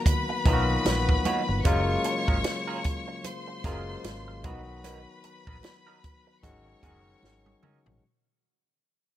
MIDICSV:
0, 0, Header, 1, 7, 480
1, 0, Start_track
1, 0, Tempo, 796813
1, 996, Time_signature, 4, 2, 24, 8
1, 5523, End_track
2, 0, Start_track
2, 0, Title_t, "Violin section"
2, 0, Program_c, 0, 48
2, 38, Note_on_c, 0, 71, 87
2, 39, Note_on_c, 0, 83, 104
2, 978, Note_off_c, 0, 71, 0
2, 978, Note_off_c, 0, 83, 0
2, 1000, Note_on_c, 0, 85, 107
2, 1001, Note_on_c, 0, 73, 93
2, 1938, Note_off_c, 0, 85, 0
2, 1939, Note_off_c, 0, 73, 0
2, 1958, Note_on_c, 0, 72, 88
2, 1959, Note_on_c, 0, 84, 97
2, 2662, Note_off_c, 0, 72, 0
2, 2663, Note_off_c, 0, 84, 0
2, 2680, Note_on_c, 0, 83, 108
2, 2681, Note_on_c, 0, 71, 89
2, 3854, Note_off_c, 0, 71, 0
2, 3854, Note_off_c, 0, 83, 0
2, 3876, Note_on_c, 0, 73, 90
2, 3879, Note_on_c, 0, 85, 99
2, 4817, Note_off_c, 0, 73, 0
2, 4818, Note_off_c, 0, 85, 0
2, 5523, End_track
3, 0, Start_track
3, 0, Title_t, "Clean electric guitar"
3, 0, Program_c, 1, 27
3, 276, Note_on_c, 1, 58, 83
3, 279, Note_on_c, 1, 63, 90
3, 280, Note_on_c, 1, 66, 94
3, 283, Note_on_c, 1, 70, 99
3, 367, Note_off_c, 1, 58, 0
3, 369, Note_off_c, 1, 63, 0
3, 369, Note_off_c, 1, 66, 0
3, 371, Note_off_c, 1, 70, 0
3, 755, Note_on_c, 1, 58, 87
3, 758, Note_on_c, 1, 63, 85
3, 760, Note_on_c, 1, 66, 90
3, 761, Note_on_c, 1, 73, 88
3, 847, Note_off_c, 1, 58, 0
3, 848, Note_off_c, 1, 63, 0
3, 849, Note_off_c, 1, 66, 0
3, 850, Note_off_c, 1, 73, 0
3, 993, Note_on_c, 1, 56, 79
3, 996, Note_on_c, 1, 61, 88
3, 999, Note_on_c, 1, 65, 86
3, 1000, Note_on_c, 1, 70, 98
3, 1086, Note_off_c, 1, 56, 0
3, 1087, Note_off_c, 1, 61, 0
3, 1088, Note_off_c, 1, 65, 0
3, 1089, Note_off_c, 1, 70, 0
3, 1373, Note_on_c, 1, 70, 63
3, 1375, Note_on_c, 1, 65, 59
3, 1377, Note_on_c, 1, 61, 54
3, 1379, Note_on_c, 1, 56, 51
3, 1425, Note_off_c, 1, 70, 0
3, 1427, Note_off_c, 1, 61, 0
3, 1427, Note_off_c, 1, 65, 0
3, 1428, Note_off_c, 1, 56, 0
3, 1611, Note_on_c, 1, 70, 80
3, 1614, Note_on_c, 1, 65, 76
3, 1615, Note_on_c, 1, 61, 72
3, 1618, Note_on_c, 1, 56, 71
3, 1679, Note_off_c, 1, 70, 0
3, 1680, Note_off_c, 1, 65, 0
3, 1681, Note_off_c, 1, 61, 0
3, 1682, Note_off_c, 1, 56, 0
3, 2195, Note_on_c, 1, 56, 92
3, 2198, Note_on_c, 1, 61, 88
3, 2200, Note_on_c, 1, 65, 94
3, 2202, Note_on_c, 1, 70, 96
3, 2286, Note_off_c, 1, 56, 0
3, 2288, Note_off_c, 1, 61, 0
3, 2289, Note_off_c, 1, 65, 0
3, 2290, Note_off_c, 1, 70, 0
3, 2675, Note_on_c, 1, 54, 79
3, 2678, Note_on_c, 1, 59, 80
3, 2681, Note_on_c, 1, 63, 84
3, 2682, Note_on_c, 1, 71, 88
3, 2766, Note_off_c, 1, 54, 0
3, 2768, Note_off_c, 1, 59, 0
3, 2769, Note_off_c, 1, 63, 0
3, 2770, Note_off_c, 1, 71, 0
3, 2917, Note_on_c, 1, 54, 74
3, 2920, Note_on_c, 1, 59, 81
3, 2921, Note_on_c, 1, 63, 80
3, 2924, Note_on_c, 1, 70, 84
3, 3007, Note_off_c, 1, 54, 0
3, 3009, Note_off_c, 1, 59, 0
3, 3009, Note_off_c, 1, 63, 0
3, 3011, Note_off_c, 1, 70, 0
3, 3295, Note_on_c, 1, 70, 62
3, 3299, Note_on_c, 1, 63, 58
3, 3301, Note_on_c, 1, 59, 50
3, 3302, Note_on_c, 1, 54, 50
3, 3347, Note_off_c, 1, 70, 0
3, 3348, Note_off_c, 1, 63, 0
3, 3349, Note_off_c, 1, 59, 0
3, 3350, Note_off_c, 1, 54, 0
3, 3533, Note_on_c, 1, 70, 65
3, 3537, Note_on_c, 1, 63, 68
3, 3538, Note_on_c, 1, 59, 64
3, 3542, Note_on_c, 1, 54, 57
3, 3600, Note_off_c, 1, 70, 0
3, 3602, Note_off_c, 1, 59, 0
3, 3602, Note_off_c, 1, 63, 0
3, 3604, Note_off_c, 1, 54, 0
3, 4114, Note_on_c, 1, 54, 90
3, 4116, Note_on_c, 1, 61, 78
3, 4119, Note_on_c, 1, 63, 83
3, 4121, Note_on_c, 1, 68, 85
3, 4206, Note_off_c, 1, 54, 0
3, 4207, Note_off_c, 1, 61, 0
3, 4208, Note_off_c, 1, 63, 0
3, 4209, Note_off_c, 1, 68, 0
3, 4594, Note_on_c, 1, 54, 79
3, 4597, Note_on_c, 1, 61, 77
3, 4600, Note_on_c, 1, 63, 80
3, 4601, Note_on_c, 1, 70, 77
3, 4686, Note_off_c, 1, 54, 0
3, 4687, Note_off_c, 1, 61, 0
3, 4689, Note_off_c, 1, 63, 0
3, 4689, Note_off_c, 1, 70, 0
3, 5523, End_track
4, 0, Start_track
4, 0, Title_t, "Tine electric piano"
4, 0, Program_c, 2, 4
4, 0, Control_c, 2, 64, 127
4, 0, Note_on_c, 2, 51, 96
4, 0, Note_on_c, 2, 54, 82
4, 0, Note_on_c, 2, 58, 81
4, 0, Note_on_c, 2, 59, 85
4, 0, Note_on_c, 2, 66, 104
4, 273, Note_off_c, 2, 51, 0
4, 273, Note_on_c, 2, 51, 85
4, 276, Note_off_c, 2, 54, 0
4, 276, Note_on_c, 2, 54, 83
4, 279, Note_off_c, 2, 59, 0
4, 279, Note_on_c, 2, 59, 86
4, 280, Note_on_c, 2, 65, 77
4, 319, Note_off_c, 2, 66, 0
4, 319, Note_on_c, 2, 66, 101
4, 323, Note_off_c, 2, 65, 0
4, 916, Note_off_c, 2, 51, 0
4, 917, Note_off_c, 2, 54, 0
4, 919, Note_off_c, 2, 59, 0
4, 939, Note_off_c, 2, 66, 0
4, 993, Note_on_c, 2, 49, 96
4, 995, Note_on_c, 2, 54, 83
4, 998, Note_off_c, 2, 58, 0
4, 998, Note_on_c, 2, 56, 85
4, 998, Note_on_c, 2, 58, 89
4, 1001, Note_on_c, 2, 65, 105
4, 1003, Control_c, 2, 64, 0
4, 1104, Control_c, 2, 64, 127
4, 1848, Note_off_c, 2, 49, 0
4, 1849, Note_off_c, 2, 54, 0
4, 1851, Note_off_c, 2, 56, 0
4, 1851, Note_off_c, 2, 58, 0
4, 1852, Note_off_c, 2, 65, 0
4, 2193, Note_on_c, 2, 49, 82
4, 2196, Note_on_c, 2, 54, 84
4, 2197, Note_on_c, 2, 56, 82
4, 2199, Note_on_c, 2, 58, 82
4, 2199, Note_on_c, 2, 65, 98
4, 2669, Note_off_c, 2, 54, 0
4, 2674, Note_off_c, 2, 49, 0
4, 2676, Note_off_c, 2, 56, 0
4, 2676, Note_on_c, 2, 51, 91
4, 2676, Note_on_c, 2, 54, 82
4, 2677, Note_off_c, 2, 58, 0
4, 2677, Note_off_c, 2, 65, 0
4, 2681, Note_on_c, 2, 59, 82
4, 2682, Control_c, 2, 64, 0
4, 2683, Note_on_c, 2, 66, 105
4, 2777, Control_c, 2, 64, 127
4, 3530, Note_off_c, 2, 51, 0
4, 3530, Note_off_c, 2, 54, 0
4, 3532, Note_off_c, 2, 59, 0
4, 3533, Note_off_c, 2, 66, 0
4, 3871, Note_on_c, 2, 51, 94
4, 3874, Note_on_c, 2, 54, 90
4, 3875, Note_on_c, 2, 56, 86
4, 3877, Note_on_c, 2, 61, 88
4, 3879, Note_on_c, 2, 66, 104
4, 3883, Control_c, 2, 64, 0
4, 4002, Control_c, 2, 64, 127
4, 4087, Note_off_c, 2, 51, 0
4, 4089, Note_off_c, 2, 54, 0
4, 4089, Note_off_c, 2, 56, 0
4, 4090, Note_off_c, 2, 61, 0
4, 4091, Note_off_c, 2, 66, 0
4, 4114, Note_on_c, 2, 51, 89
4, 4116, Note_on_c, 2, 54, 81
4, 4117, Note_on_c, 2, 56, 83
4, 4120, Note_on_c, 2, 61, 78
4, 4120, Note_on_c, 2, 66, 89
4, 4757, Note_off_c, 2, 51, 0
4, 4758, Note_off_c, 2, 54, 0
4, 4758, Note_off_c, 2, 56, 0
4, 4760, Note_off_c, 2, 61, 0
4, 4760, Note_off_c, 2, 66, 0
4, 4843, Control_c, 2, 64, 0
4, 5523, End_track
5, 0, Start_track
5, 0, Title_t, "Fingered electric bass"
5, 0, Program_c, 3, 33
5, 275, Note_on_c, 3, 35, 105
5, 457, Note_off_c, 3, 35, 0
5, 516, Note_on_c, 3, 34, 93
5, 698, Note_off_c, 3, 34, 0
5, 896, Note_on_c, 3, 31, 87
5, 972, Note_off_c, 3, 31, 0
5, 996, Note_on_c, 3, 30, 115
5, 1177, Note_off_c, 3, 30, 0
5, 1374, Note_on_c, 3, 32, 90
5, 1450, Note_off_c, 3, 32, 0
5, 2194, Note_on_c, 3, 30, 91
5, 2376, Note_off_c, 3, 30, 0
5, 2436, Note_on_c, 3, 32, 102
5, 2676, Note_off_c, 3, 32, 0
5, 2676, Note_on_c, 3, 35, 91
5, 3038, Note_off_c, 3, 35, 0
5, 3296, Note_on_c, 3, 34, 88
5, 3371, Note_off_c, 3, 34, 0
5, 3876, Note_on_c, 3, 32, 101
5, 4057, Note_off_c, 3, 32, 0
5, 4113, Note_on_c, 3, 30, 90
5, 4295, Note_off_c, 3, 30, 0
5, 4355, Note_on_c, 3, 32, 89
5, 4537, Note_off_c, 3, 32, 0
5, 4739, Note_on_c, 3, 33, 92
5, 4813, Note_off_c, 3, 33, 0
5, 5523, End_track
6, 0, Start_track
6, 0, Title_t, "Muted clean electric guitar strokes"
6, 37, Note_on_c, 9, 29, 35
6, 97, Note_off_c, 9, 29, 0
6, 176, Note_on_c, 9, 29, 34
6, 236, Note_off_c, 9, 29, 0
6, 415, Note_on_c, 9, 29, 49
6, 476, Note_off_c, 9, 29, 0
6, 657, Note_on_c, 9, 29, 48
6, 717, Note_off_c, 9, 29, 0
6, 895, Note_on_c, 9, 29, 50
6, 955, Note_off_c, 9, 29, 0
6, 1234, Note_on_c, 9, 29, 43
6, 1294, Note_off_c, 9, 29, 0
6, 1476, Note_on_c, 9, 29, 37
6, 1536, Note_off_c, 9, 29, 0
6, 1712, Note_on_c, 9, 29, 48
6, 1773, Note_off_c, 9, 29, 0
6, 1854, Note_on_c, 9, 29, 44
6, 1914, Note_off_c, 9, 29, 0
6, 1955, Note_on_c, 9, 29, 35
6, 2015, Note_off_c, 9, 29, 0
6, 2093, Note_on_c, 9, 29, 39
6, 2153, Note_off_c, 9, 29, 0
6, 2335, Note_on_c, 9, 29, 44
6, 2395, Note_off_c, 9, 29, 0
6, 2578, Note_on_c, 9, 29, 50
6, 2638, Note_off_c, 9, 29, 0
6, 2817, Note_on_c, 9, 29, 49
6, 2877, Note_off_c, 9, 29, 0
6, 3157, Note_on_c, 9, 29, 39
6, 3217, Note_off_c, 9, 29, 0
6, 3398, Note_on_c, 9, 29, 40
6, 3458, Note_off_c, 9, 29, 0
6, 3638, Note_on_c, 9, 29, 38
6, 3698, Note_off_c, 9, 29, 0
6, 3777, Note_on_c, 9, 29, 47
6, 3837, Note_off_c, 9, 29, 0
6, 3877, Note_on_c, 9, 29, 47
6, 3938, Note_off_c, 9, 29, 0
6, 4014, Note_on_c, 9, 29, 43
6, 4075, Note_off_c, 9, 29, 0
6, 4255, Note_on_c, 9, 29, 45
6, 4316, Note_off_c, 9, 29, 0
6, 4495, Note_on_c, 9, 29, 42
6, 4555, Note_off_c, 9, 29, 0
6, 4735, Note_on_c, 9, 29, 40
6, 4795, Note_off_c, 9, 29, 0
6, 5523, End_track
7, 0, Start_track
7, 0, Title_t, "Drums"
7, 35, Note_on_c, 9, 36, 106
7, 35, Note_on_c, 9, 62, 50
7, 35, Note_on_c, 9, 64, 69
7, 37, Note_on_c, 9, 42, 93
7, 95, Note_off_c, 9, 36, 0
7, 95, Note_off_c, 9, 62, 0
7, 95, Note_off_c, 9, 64, 0
7, 97, Note_off_c, 9, 42, 0
7, 274, Note_on_c, 9, 36, 103
7, 275, Note_on_c, 9, 62, 56
7, 275, Note_on_c, 9, 64, 78
7, 277, Note_on_c, 9, 42, 75
7, 335, Note_off_c, 9, 36, 0
7, 335, Note_off_c, 9, 62, 0
7, 335, Note_off_c, 9, 64, 0
7, 337, Note_off_c, 9, 42, 0
7, 513, Note_on_c, 9, 63, 71
7, 515, Note_on_c, 9, 42, 100
7, 519, Note_on_c, 9, 38, 119
7, 573, Note_off_c, 9, 63, 0
7, 575, Note_off_c, 9, 42, 0
7, 580, Note_off_c, 9, 38, 0
7, 655, Note_on_c, 9, 36, 100
7, 715, Note_off_c, 9, 36, 0
7, 754, Note_on_c, 9, 42, 79
7, 754, Note_on_c, 9, 63, 81
7, 814, Note_off_c, 9, 42, 0
7, 814, Note_off_c, 9, 63, 0
7, 993, Note_on_c, 9, 42, 93
7, 994, Note_on_c, 9, 62, 50
7, 995, Note_on_c, 9, 36, 113
7, 1053, Note_off_c, 9, 42, 0
7, 1055, Note_off_c, 9, 62, 0
7, 1056, Note_off_c, 9, 36, 0
7, 1230, Note_on_c, 9, 42, 65
7, 1237, Note_on_c, 9, 62, 30
7, 1290, Note_off_c, 9, 42, 0
7, 1297, Note_off_c, 9, 62, 0
7, 1374, Note_on_c, 9, 36, 99
7, 1434, Note_off_c, 9, 36, 0
7, 1470, Note_on_c, 9, 42, 90
7, 1472, Note_on_c, 9, 63, 63
7, 1475, Note_on_c, 9, 38, 114
7, 1531, Note_off_c, 9, 42, 0
7, 1533, Note_off_c, 9, 63, 0
7, 1535, Note_off_c, 9, 38, 0
7, 1712, Note_on_c, 9, 42, 73
7, 1717, Note_on_c, 9, 36, 97
7, 1772, Note_off_c, 9, 42, 0
7, 1777, Note_off_c, 9, 36, 0
7, 1954, Note_on_c, 9, 42, 98
7, 1954, Note_on_c, 9, 62, 50
7, 2014, Note_off_c, 9, 42, 0
7, 2014, Note_off_c, 9, 62, 0
7, 2194, Note_on_c, 9, 36, 109
7, 2194, Note_on_c, 9, 62, 57
7, 2196, Note_on_c, 9, 42, 76
7, 2202, Note_on_c, 9, 38, 38
7, 2254, Note_off_c, 9, 36, 0
7, 2254, Note_off_c, 9, 62, 0
7, 2256, Note_off_c, 9, 42, 0
7, 2262, Note_off_c, 9, 38, 0
7, 2434, Note_on_c, 9, 63, 64
7, 2435, Note_on_c, 9, 42, 104
7, 2440, Note_on_c, 9, 38, 115
7, 2495, Note_off_c, 9, 63, 0
7, 2496, Note_off_c, 9, 42, 0
7, 2500, Note_off_c, 9, 38, 0
7, 2674, Note_on_c, 9, 42, 80
7, 2675, Note_on_c, 9, 63, 80
7, 2677, Note_on_c, 9, 36, 121
7, 2734, Note_off_c, 9, 42, 0
7, 2736, Note_off_c, 9, 63, 0
7, 2737, Note_off_c, 9, 36, 0
7, 2916, Note_on_c, 9, 42, 96
7, 2916, Note_on_c, 9, 62, 50
7, 2977, Note_off_c, 9, 42, 0
7, 2977, Note_off_c, 9, 62, 0
7, 3154, Note_on_c, 9, 42, 71
7, 3159, Note_on_c, 9, 62, 29
7, 3214, Note_off_c, 9, 42, 0
7, 3220, Note_off_c, 9, 62, 0
7, 3296, Note_on_c, 9, 36, 108
7, 3356, Note_off_c, 9, 36, 0
7, 3392, Note_on_c, 9, 63, 65
7, 3396, Note_on_c, 9, 42, 93
7, 3401, Note_on_c, 9, 38, 113
7, 3452, Note_off_c, 9, 63, 0
7, 3457, Note_off_c, 9, 42, 0
7, 3461, Note_off_c, 9, 38, 0
7, 3638, Note_on_c, 9, 42, 76
7, 3640, Note_on_c, 9, 36, 94
7, 3698, Note_off_c, 9, 42, 0
7, 3700, Note_off_c, 9, 36, 0
7, 3875, Note_on_c, 9, 62, 49
7, 3875, Note_on_c, 9, 64, 72
7, 3876, Note_on_c, 9, 36, 100
7, 3878, Note_on_c, 9, 42, 89
7, 3935, Note_off_c, 9, 62, 0
7, 3935, Note_off_c, 9, 64, 0
7, 3937, Note_off_c, 9, 36, 0
7, 3939, Note_off_c, 9, 42, 0
7, 4114, Note_on_c, 9, 36, 108
7, 4114, Note_on_c, 9, 62, 57
7, 4114, Note_on_c, 9, 64, 84
7, 4116, Note_on_c, 9, 42, 74
7, 4174, Note_off_c, 9, 62, 0
7, 4174, Note_off_c, 9, 64, 0
7, 4175, Note_off_c, 9, 36, 0
7, 4177, Note_off_c, 9, 42, 0
7, 4353, Note_on_c, 9, 63, 70
7, 4363, Note_on_c, 9, 38, 60
7, 4413, Note_off_c, 9, 63, 0
7, 4423, Note_off_c, 9, 38, 0
7, 4495, Note_on_c, 9, 48, 72
7, 4555, Note_off_c, 9, 48, 0
7, 4595, Note_on_c, 9, 63, 80
7, 4596, Note_on_c, 9, 45, 102
7, 4655, Note_off_c, 9, 63, 0
7, 4656, Note_off_c, 9, 45, 0
7, 4736, Note_on_c, 9, 43, 90
7, 4796, Note_off_c, 9, 43, 0
7, 5523, End_track
0, 0, End_of_file